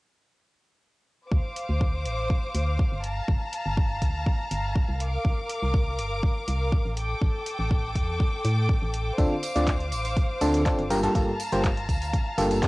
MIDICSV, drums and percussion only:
0, 0, Header, 1, 2, 480
1, 0, Start_track
1, 0, Key_signature, -1, "minor"
1, 0, Tempo, 491803
1, 1283, Time_signature, 4, 2, 24, 8
1, 12375, End_track
2, 0, Start_track
2, 0, Title_t, "Drums"
2, 1283, Note_on_c, 9, 36, 111
2, 1380, Note_off_c, 9, 36, 0
2, 1523, Note_on_c, 9, 46, 92
2, 1621, Note_off_c, 9, 46, 0
2, 1763, Note_on_c, 9, 36, 107
2, 1860, Note_off_c, 9, 36, 0
2, 2003, Note_on_c, 9, 46, 87
2, 2101, Note_off_c, 9, 46, 0
2, 2242, Note_on_c, 9, 36, 108
2, 2340, Note_off_c, 9, 36, 0
2, 2482, Note_on_c, 9, 46, 103
2, 2580, Note_off_c, 9, 46, 0
2, 2722, Note_on_c, 9, 36, 107
2, 2820, Note_off_c, 9, 36, 0
2, 2962, Note_on_c, 9, 46, 86
2, 3060, Note_off_c, 9, 46, 0
2, 3202, Note_on_c, 9, 36, 113
2, 3299, Note_off_c, 9, 36, 0
2, 3443, Note_on_c, 9, 46, 100
2, 3540, Note_off_c, 9, 46, 0
2, 3682, Note_on_c, 9, 36, 116
2, 3780, Note_off_c, 9, 36, 0
2, 3922, Note_on_c, 9, 36, 62
2, 3922, Note_on_c, 9, 46, 92
2, 4020, Note_off_c, 9, 36, 0
2, 4020, Note_off_c, 9, 46, 0
2, 4162, Note_on_c, 9, 36, 116
2, 4260, Note_off_c, 9, 36, 0
2, 4403, Note_on_c, 9, 46, 105
2, 4501, Note_off_c, 9, 46, 0
2, 4642, Note_on_c, 9, 36, 114
2, 4740, Note_off_c, 9, 36, 0
2, 4884, Note_on_c, 9, 46, 89
2, 4981, Note_off_c, 9, 46, 0
2, 5123, Note_on_c, 9, 36, 110
2, 5220, Note_off_c, 9, 36, 0
2, 5364, Note_on_c, 9, 46, 102
2, 5462, Note_off_c, 9, 46, 0
2, 5602, Note_on_c, 9, 36, 118
2, 5700, Note_off_c, 9, 36, 0
2, 5844, Note_on_c, 9, 46, 93
2, 5942, Note_off_c, 9, 46, 0
2, 6083, Note_on_c, 9, 36, 116
2, 6180, Note_off_c, 9, 36, 0
2, 6323, Note_on_c, 9, 46, 105
2, 6421, Note_off_c, 9, 46, 0
2, 6563, Note_on_c, 9, 36, 116
2, 6660, Note_off_c, 9, 36, 0
2, 6803, Note_on_c, 9, 46, 90
2, 6901, Note_off_c, 9, 46, 0
2, 7042, Note_on_c, 9, 36, 109
2, 7140, Note_off_c, 9, 36, 0
2, 7283, Note_on_c, 9, 46, 105
2, 7381, Note_off_c, 9, 46, 0
2, 7522, Note_on_c, 9, 36, 116
2, 7620, Note_off_c, 9, 36, 0
2, 7763, Note_on_c, 9, 36, 62
2, 7764, Note_on_c, 9, 46, 92
2, 7860, Note_off_c, 9, 36, 0
2, 7861, Note_off_c, 9, 46, 0
2, 8003, Note_on_c, 9, 36, 114
2, 8100, Note_off_c, 9, 36, 0
2, 8243, Note_on_c, 9, 46, 103
2, 8341, Note_off_c, 9, 46, 0
2, 8483, Note_on_c, 9, 36, 112
2, 8580, Note_off_c, 9, 36, 0
2, 8723, Note_on_c, 9, 46, 93
2, 8821, Note_off_c, 9, 46, 0
2, 8963, Note_on_c, 9, 36, 109
2, 8963, Note_on_c, 9, 42, 59
2, 8968, Note_on_c, 9, 54, 38
2, 9060, Note_off_c, 9, 36, 0
2, 9061, Note_off_c, 9, 42, 0
2, 9065, Note_off_c, 9, 54, 0
2, 9203, Note_on_c, 9, 46, 99
2, 9207, Note_on_c, 9, 54, 82
2, 9301, Note_off_c, 9, 46, 0
2, 9305, Note_off_c, 9, 54, 0
2, 9329, Note_on_c, 9, 42, 49
2, 9332, Note_on_c, 9, 54, 52
2, 9427, Note_off_c, 9, 42, 0
2, 9430, Note_off_c, 9, 54, 0
2, 9442, Note_on_c, 9, 42, 61
2, 9443, Note_on_c, 9, 36, 110
2, 9444, Note_on_c, 9, 54, 34
2, 9446, Note_on_c, 9, 39, 108
2, 9540, Note_off_c, 9, 36, 0
2, 9540, Note_off_c, 9, 42, 0
2, 9541, Note_off_c, 9, 54, 0
2, 9544, Note_off_c, 9, 39, 0
2, 9569, Note_on_c, 9, 42, 33
2, 9666, Note_off_c, 9, 42, 0
2, 9683, Note_on_c, 9, 46, 87
2, 9687, Note_on_c, 9, 54, 87
2, 9780, Note_off_c, 9, 46, 0
2, 9784, Note_off_c, 9, 54, 0
2, 9808, Note_on_c, 9, 42, 48
2, 9811, Note_on_c, 9, 54, 51
2, 9906, Note_off_c, 9, 42, 0
2, 9909, Note_off_c, 9, 54, 0
2, 9918, Note_on_c, 9, 54, 36
2, 9923, Note_on_c, 9, 36, 112
2, 9923, Note_on_c, 9, 42, 58
2, 10016, Note_off_c, 9, 54, 0
2, 10020, Note_off_c, 9, 42, 0
2, 10021, Note_off_c, 9, 36, 0
2, 10162, Note_on_c, 9, 46, 100
2, 10166, Note_on_c, 9, 54, 83
2, 10260, Note_off_c, 9, 46, 0
2, 10264, Note_off_c, 9, 54, 0
2, 10286, Note_on_c, 9, 54, 53
2, 10288, Note_on_c, 9, 42, 49
2, 10384, Note_off_c, 9, 54, 0
2, 10385, Note_off_c, 9, 42, 0
2, 10403, Note_on_c, 9, 36, 112
2, 10403, Note_on_c, 9, 42, 62
2, 10404, Note_on_c, 9, 54, 38
2, 10407, Note_on_c, 9, 39, 114
2, 10500, Note_off_c, 9, 36, 0
2, 10501, Note_off_c, 9, 42, 0
2, 10502, Note_off_c, 9, 54, 0
2, 10505, Note_off_c, 9, 39, 0
2, 10528, Note_on_c, 9, 42, 33
2, 10625, Note_off_c, 9, 42, 0
2, 10642, Note_on_c, 9, 54, 88
2, 10643, Note_on_c, 9, 46, 88
2, 10740, Note_off_c, 9, 46, 0
2, 10740, Note_off_c, 9, 54, 0
2, 10769, Note_on_c, 9, 42, 50
2, 10769, Note_on_c, 9, 54, 49
2, 10867, Note_off_c, 9, 42, 0
2, 10867, Note_off_c, 9, 54, 0
2, 10883, Note_on_c, 9, 36, 108
2, 10884, Note_on_c, 9, 42, 61
2, 10889, Note_on_c, 9, 54, 37
2, 10980, Note_off_c, 9, 36, 0
2, 10982, Note_off_c, 9, 42, 0
2, 10987, Note_off_c, 9, 54, 0
2, 11124, Note_on_c, 9, 46, 91
2, 11125, Note_on_c, 9, 54, 90
2, 11221, Note_off_c, 9, 46, 0
2, 11223, Note_off_c, 9, 54, 0
2, 11242, Note_on_c, 9, 54, 46
2, 11249, Note_on_c, 9, 42, 50
2, 11340, Note_off_c, 9, 54, 0
2, 11346, Note_off_c, 9, 42, 0
2, 11362, Note_on_c, 9, 36, 109
2, 11363, Note_on_c, 9, 42, 63
2, 11365, Note_on_c, 9, 54, 33
2, 11367, Note_on_c, 9, 39, 109
2, 11460, Note_off_c, 9, 36, 0
2, 11461, Note_off_c, 9, 42, 0
2, 11462, Note_off_c, 9, 54, 0
2, 11465, Note_off_c, 9, 39, 0
2, 11490, Note_on_c, 9, 42, 34
2, 11587, Note_off_c, 9, 42, 0
2, 11602, Note_on_c, 9, 36, 59
2, 11603, Note_on_c, 9, 46, 84
2, 11610, Note_on_c, 9, 54, 87
2, 11700, Note_off_c, 9, 36, 0
2, 11701, Note_off_c, 9, 46, 0
2, 11708, Note_off_c, 9, 54, 0
2, 11729, Note_on_c, 9, 42, 49
2, 11732, Note_on_c, 9, 54, 50
2, 11826, Note_off_c, 9, 42, 0
2, 11830, Note_off_c, 9, 54, 0
2, 11842, Note_on_c, 9, 36, 105
2, 11843, Note_on_c, 9, 42, 61
2, 11845, Note_on_c, 9, 54, 39
2, 11940, Note_off_c, 9, 36, 0
2, 11941, Note_off_c, 9, 42, 0
2, 11943, Note_off_c, 9, 54, 0
2, 12082, Note_on_c, 9, 46, 100
2, 12083, Note_on_c, 9, 54, 91
2, 12180, Note_off_c, 9, 46, 0
2, 12181, Note_off_c, 9, 54, 0
2, 12208, Note_on_c, 9, 54, 51
2, 12209, Note_on_c, 9, 42, 49
2, 12306, Note_off_c, 9, 42, 0
2, 12306, Note_off_c, 9, 54, 0
2, 12323, Note_on_c, 9, 36, 111
2, 12323, Note_on_c, 9, 42, 64
2, 12327, Note_on_c, 9, 39, 115
2, 12327, Note_on_c, 9, 54, 37
2, 12375, Note_off_c, 9, 36, 0
2, 12375, Note_off_c, 9, 39, 0
2, 12375, Note_off_c, 9, 42, 0
2, 12375, Note_off_c, 9, 54, 0
2, 12375, End_track
0, 0, End_of_file